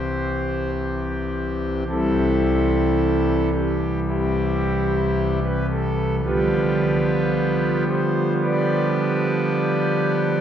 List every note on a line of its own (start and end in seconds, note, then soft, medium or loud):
0.00 1.84 C2 medium
0.00 1.84 C3 medium
0.00 1.83 E3 soft
0.00 1.83 C4 soft
0.00 1.83 G4 soft
0.00 0.71 C5 medium
1.88 6.21 C2 medium
1.88 6.21 C3 medium
1.88 6.21 E3 medium
1.88 6.21 G3 medium
1.88 3.49 C4 medium
1.88 3.50 E4 medium
1.88 3.49 A4 loud
3.54 3.99 G4 medium
4.08 5.39 C4 medium
4.08 5.39 E4 medium
4.08 5.39 G4 medium
5.43 5.66 B4 medium
5.70 6.16 A4 medium
6.25 10.41 D3 medium
6.25 10.41 F3 medium
6.25 10.41 G3 medium
6.25 10.41 B3 medium
6.25 7.84 F4 medium
6.25 7.84 G4 medium
6.25 7.84 B4 loud
7.88 8.34 C5 medium
8.42 10.41 G4 medium
8.42 10.41 B4 medium
8.42 10.41 D5 loud